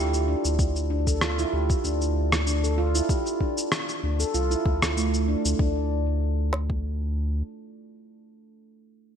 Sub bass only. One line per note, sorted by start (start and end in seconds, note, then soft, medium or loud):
0.00 0.35 D2 medium
0.45 1.45 D2 loud
1.53 1.74 D2 medium
1.84 3.01 D2 loud
4.03 4.25 D2 loud
4.34 4.56 C2 medium
4.66 5.36 D2 medium
5.45 5.55 D2 loud
5.59 7.43 D2 medium